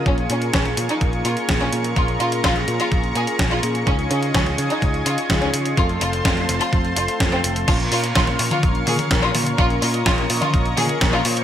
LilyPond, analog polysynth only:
\new Staff \with { instrumentName = "Analog polysynth" } { \time 4/4 \key bes \minor \tempo 4 = 126 <bes des' aes'>2. <bes des' f' aes'>4 | <bes des' f' aes'>2.~ <bes des' f' aes'>8 <bes des' f' aes'>8 | <des' ees' f' aes'>2. <des' ees' f' aes'>4 | <a c' a'>2.~ <a c' a'>8 <a c' f' a'>8 |
<bes des' f' bes'>2. <bes des' f' bes'>4 | <bes des' f' bes'>2~ <bes des' f' bes'>8. <bes des' f' bes'>8. <bes des' f' c''>8 | }